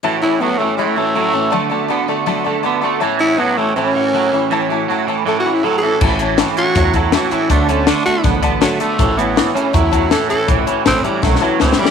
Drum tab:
CC |------------------------|------------------------|------------------------|------------------------|
HH |------------------------|------------------------|------------------------|------------------------|
SD |------------------------|------------------------|------------------------|------------------------|
BD |------------------------|------------------------|------------------------|------------------------|

CC |x-----------------------|------------------------|------------------------|------------------------|
HH |---x--x--x--x--x--x--x--|x--x--x--x--x--x--x--x--|x--x--x--x--x--x--x--x--|x--x--x--x--------------|
SD |------o-----o-----o-----|------o-----o-----o-----|------o-----------o-----|------o-----o-o---o-o-o-|
BD |o-----------o--o--------|o-----------o--o--------|o-----------o--o--------|o-----------o-----------|